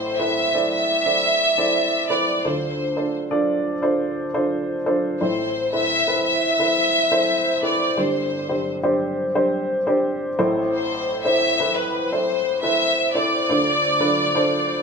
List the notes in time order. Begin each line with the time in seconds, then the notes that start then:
Already playing: A1 A2 C4 E4 A4 C5
0.18 C4 E4 A4 B4 E5
0.54 C4 E4 A4 D5
0.70 E5
1.06 C4 E4 A4 D5
1.58 C4 E4 A4 D5
2.10 C4 E4 A4 B4 D5
2.44 D2 D3 D4 F4 A4 C5
2.96 D4 F4 A4 C5
3.31 D4 F4 A4 D5
3.82 D4 F4 A4 C5
4.34 D4 F4 A4 C5
4.86 D4 F4 A4 C5
5.20 A1 A2 C4 E4 A4 C5
5.73 C4 E4 A4 B4 E5
6.07 C4 E4 A4 B4
6.26 E5
6.59 C4 E4 A4 B4
7.12 C4 E4 A4 C5
7.62 C4 E4 A4 B4 D5
7.97 G1 G2 C4 D4 G4 C5
8.49 C4 D4 G4 C5
8.83 C4 D4 G4 C5
9.35 C4 D4 G4 C5
9.87 C4 D4 G4 C5
10.39 A1 A2 C4 E4 A4 C5
10.73 C5
11.24 C4 E4 A4 C5 E5
11.60 C4 E4 A4 B4
11.75 B4
12.10 C4 E4 A4 C5
12.62 C4 E4 A4 B4 E5
13.14 C4 E4 A4 C5 D5
13.49 D2 D3 D4 F4 A4 C5
14.00 D4 F4 A4 B4
14.35 D4 F4 A4 C5